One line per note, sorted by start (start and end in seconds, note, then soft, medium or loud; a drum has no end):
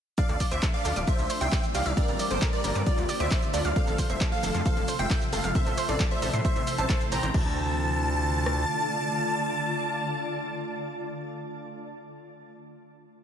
0.18 1.07 F3 medium
0.18 1.07 A3 medium
0.18 0.23 D4 medium
0.18 1.07 D4 medium
0.18 0.40 D5 medium
0.18 0.40 F5 loud
0.18 kick loud
0.18 closed hi-hat medium
0.18 shaker soft
0.29 0.36 D2 medium
0.29 0.32 A4 medium
0.29 closed hi-hat soft
0.29 shaker soft
0.40 0.46 D5 loud
0.40 kick medium
0.40 open hi-hat loud
0.40 shaker medium
0.51 0.59 D2 medium
0.51 0.66 C5 medium
0.51 0.66 E5 loud
0.51 0.66 E5 medium
0.51 0.57 D6 medium
0.51 closed hi-hat medium
0.51 shaker soft
0.63 0.68 A4 medium
0.63 kick loud
0.63 clap loud
0.63 closed hi-hat medium
0.63 shaker soft
0.74 0.96 D5 medium
0.74 0.96 F5 loud
0.74 closed hi-hat soft
0.85 0.92 D2 medium
0.85 0.93 A4 medium
0.85 open hi-hat medium
0.85 shaker medium
0.96 1.04 D1 medium
0.96 1.02 D6 medium
0.96 closed hi-hat medium
0.96 shaker soft
1.07 1.96 E3 medium
1.07 2.85 G3 medium
1.07 1.96 C4 medium
1.07 1.13 C5 medium
1.07 1.29 C5 medium
1.07 1.29 E5 loud
1.07 1.29 E5 medium
1.07 kick loud
1.07 closed hi-hat medium
1.07 shaker soft
1.19 1.26 C2 medium
1.19 closed hi-hat soft
1.19 shaker soft
1.30 1.35 C5 loud
1.30 open hi-hat loud
1.30 shaker medium
1.41 1.48 C2 medium
1.41 1.63 E5 medium
1.41 1.63 G5 loud
1.41 1.63 G5 medium
1.41 1.47 C6 medium
1.41 closed hi-hat medium
1.41 shaker soft
1.52 kick loud
1.52 clap loud
1.52 closed hi-hat medium
1.52 shaker soft
1.63 closed hi-hat soft
1.63 shaker soft
1.75 1.82 C2 medium
1.75 1.83 G4 medium
1.75 1.89 D5 medium
1.75 1.89 F5 medium
1.75 open hi-hat loud
1.75 shaker medium
1.86 1.93 C2 medium
1.86 1.91 E5 loud
1.86 closed hi-hat medium
1.86 shaker soft
1.97 3.74 D3 medium
1.97 2.86 A#3 medium
1.97 2.03 D4 medium
1.97 2.19 A#4 medium
1.97 2.19 D5 loud
1.97 kick loud
1.97 closed hi-hat medium
1.97 shaker soft
2.08 2.16 G1 medium
2.08 2.12 A#4 medium
2.08 closed hi-hat soft
2.08 shaker soft
2.19 2.25 D5 loud
2.19 open hi-hat loud
2.19 shaker medium
2.31 2.38 G1 medium
2.31 2.45 A4 medium
2.31 2.45 C5 loud
2.31 2.45 C5 medium
2.31 2.36 D6 medium
2.31 closed hi-hat medium
2.31 shaker soft
2.42 2.47 A#4 medium
2.42 kick loud
2.42 clap loud
2.42 closed hi-hat medium
2.42 shaker soft
2.53 2.75 A#4 medium
2.53 2.75 D5 loud
2.53 closed hi-hat soft
2.64 2.71 G1 medium
2.64 2.73 A#4 medium
2.64 open hi-hat loud
2.64 shaker medium
2.75 2.83 G2 medium
2.75 2.81 D6 medium
2.75 closed hi-hat medium
2.75 shaker soft
2.86 5.52 F3 medium
2.86 5.52 A3 medium
2.86 3.08 F4 medium
2.86 3.08 D5 loud
2.86 2.92 D5 medium
2.86 3.08 D5 loud
2.86 kick loud
2.86 closed hi-hat medium
2.86 shaker soft
2.98 3.05 D2 medium
2.98 closed hi-hat soft
2.98 shaker soft
3.09 3.14 D5 loud
3.09 open hi-hat loud
3.09 shaker medium
3.20 3.27 D2 medium
3.20 3.42 C5 medium
3.20 3.42 E5 medium
3.20 3.42 E5 loud
3.20 3.26 D6 medium
3.20 closed hi-hat medium
3.20 shaker soft
3.31 kick loud
3.31 clap loud
3.31 closed hi-hat medium
3.31 shaker soft
3.42 closed hi-hat soft
3.42 shaker soft
3.54 3.61 D2 medium
3.54 3.68 F4 medium
3.54 3.62 A4 medium
3.54 3.68 D5 medium
3.54 open hi-hat loud
3.54 shaker medium
3.65 3.72 D2 medium
3.65 3.70 F5 loud
3.65 closed hi-hat medium
3.65 shaker soft
3.76 7.31 C3 medium
3.76 3.82 C4 medium
3.76 3.98 A4 medium
3.76 3.98 F5 loud
3.76 kick loud
3.76 closed hi-hat medium
3.76 shaker soft
3.87 3.95 F1 medium
3.87 3.91 A4 medium
3.87 closed hi-hat soft
3.87 shaker soft
3.98 4.04 C5 loud
3.98 kick medium
3.98 open hi-hat loud
3.98 shaker medium
4.10 4.17 F1 medium
4.10 4.24 C5 medium
4.10 4.24 E5 medium
4.10 4.15 C6 medium
4.10 closed hi-hat medium
4.10 shaker soft
4.21 4.26 A4 medium
4.21 kick loud
4.21 clap loud
4.21 closed hi-hat medium
4.21 shaker soft
4.32 4.54 A4 medium
4.32 4.54 F5 loud
4.32 closed hi-hat soft
4.43 4.51 F1 loud
4.43 4.52 A4 medium
4.43 open hi-hat loud
4.43 shaker medium
4.54 4.62 F2 medium
4.54 4.60 C6 medium
4.54 closed hi-hat medium
4.54 shaker soft
4.65 4.87 A4 medium
4.65 4.71 C5 medium
4.65 4.87 F5 loud
4.65 kick loud
4.65 closed hi-hat medium
4.65 shaker soft
4.77 4.84 F1 medium
4.77 closed hi-hat soft
4.77 shaker soft
4.88 4.94 C5 medium
4.88 open hi-hat loud
4.88 shaker medium
4.99 5.07 F1 medium
4.99 5.21 E5 medium
4.99 5.21 G5 medium
4.99 5.21 G5 loud
4.99 5.05 C6 medium
4.99 closed hi-hat medium
4.99 shaker soft
5.10 kick loud
5.10 clap loud
5.10 closed hi-hat soft
5.10 shaker soft
5.22 closed hi-hat soft
5.22 shaker soft
5.33 5.40 F1 medium
5.33 5.47 A4 medium
5.33 5.41 A4 medium
5.33 5.47 F5 medium
5.33 open hi-hat loud
5.33 shaker medium
5.44 5.51 F1 medium
5.44 5.50 F5 loud
5.44 closed hi-hat soft
5.44 shaker soft
5.55 7.32 E3 medium
5.55 7.32 A3 medium
5.55 5.61 C4 medium
5.55 5.77 C5 medium
5.55 5.77 E5 loud
5.55 kick loud
5.55 closed hi-hat soft
5.55 shaker soft
5.66 5.74 A1 medium
5.66 5.70 A4 medium
5.66 closed hi-hat soft
5.66 shaker soft
5.78 5.83 C5 loud
5.78 open hi-hat loud
5.78 shaker medium
5.89 5.96 A1 medium
5.89 6.03 A4 medium
5.89 6.03 D5 loud
5.89 6.03 D5 medium
5.89 5.94 C6 medium
5.89 closed hi-hat medium
5.89 shaker soft
6.00 6.06 A4 medium
6.00 kick loud
6.00 clap loud
6.00 closed hi-hat medium
6.00 shaker soft
6.11 6.33 C5 medium
6.11 6.33 E5 loud
6.11 closed hi-hat soft
6.11 shaker soft
6.22 6.30 A1 medium
6.22 6.31 A4 medium
6.22 open hi-hat loud
6.22 shaker medium
6.33 6.41 A2 medium
6.33 6.39 C6 medium
6.33 closed hi-hat medium
6.33 shaker soft
6.45 6.67 C5 medium
6.45 6.50 C5 medium
6.45 6.67 E5 loud
6.45 kick loud
6.45 closed hi-hat medium
6.45 shaker soft
6.56 6.63 A1 medium
6.56 closed hi-hat soft
6.56 shaker soft
6.67 6.73 E5 medium
6.67 open hi-hat loud
6.67 shaker medium
6.78 6.86 A1 medium
6.78 7.00 C5 medium
6.78 6.87 E5 medium
6.78 7.00 A5 loud
6.78 closed hi-hat soft
6.78 shaker soft
6.89 6.93 A4 medium
6.89 kick loud
6.89 clap loud
6.89 closed hi-hat medium
6.89 shaker soft
7.01 closed hi-hat soft
7.01 shaker soft
7.12 7.19 A1 loud
7.12 7.15 C5 loud
7.12 7.27 G5 medium
7.12 7.26 A#5 medium
7.12 7.27 A#5 medium
7.12 open hi-hat loud
7.12 shaker medium
7.23 7.30 A1 medium
7.23 7.31 C5 medium
7.23 closed hi-hat medium
7.23 shaker soft
7.34 8.65 D2 loud
7.34 11.32 D3 medium
7.34 11.31 A3 medium
7.34 7.55 D4 medium
7.34 11.32 F4 medium
7.34 11.32 D5 medium
7.34 11.31 A5 loud
7.34 11.32 A5 medium
7.34 11.32 A5 loud
7.34 kick loud
7.34 crash medium
8.46 cross-stick medium